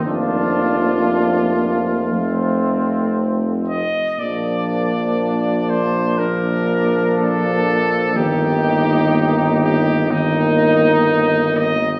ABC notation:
X:1
M:4/4
L:1/8
Q:1/4=61
K:Bb
V:1 name="Trumpet"
F6 z e | d3 c B2 A2 | G3 G E3 e |]
V:2 name="Flugelhorn"
D3 z C3 z | D4 D4 | E4 E3 z |]
V:3 name="French horn"
B,4 A,3 z | B,4 B,4 | B,4 B,3 z |]
V:4 name="Trombone" clef=bass
F,4 F,3 z | F,4 F,4 | E,4 E,3 z |]
V:5 name="Tuba" clef=bass
F,,,6- F,,, z | B,,,8 | G,,,8 |]